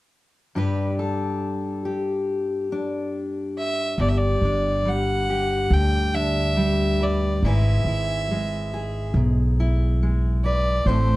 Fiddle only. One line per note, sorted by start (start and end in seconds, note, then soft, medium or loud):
3.58 3.98 E5 medium
4.01 4.10 D5 medium
4.09 4.19 E5 medium
4.18 4.90 D5 medium
4.89 5.75 F#5 medium
5.73 6.17 G5 medium
6.15 7.04 E5 medium
7.03 7.46 D5 medium
7.45 9.16 E5 medium
10.45 10.89 D5 medium
10.87 11.16 C5 medium